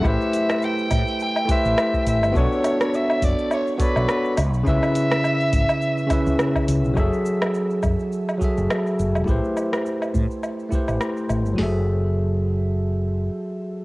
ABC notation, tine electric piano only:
X:1
M:4/4
L:1/8
Q:"Swing 16ths" 1/4=104
K:F#m
V:1 name="Tine electric piano"
[A,E=GB=c]4- [A,EGBc] [A,EGBc]3 | [B,DFAc]4- [B,DFAc] [B,FAcd]2 z | [C,CEBe]4- [C,CEBe] [C,CEBe]3 | [F,FGAe]4- [F,FGAe] [F,FGAe]3 |
[A,E=GB=c]4- [A,EGBc] [A,EGBc]3 | [F,FGAe]8 |]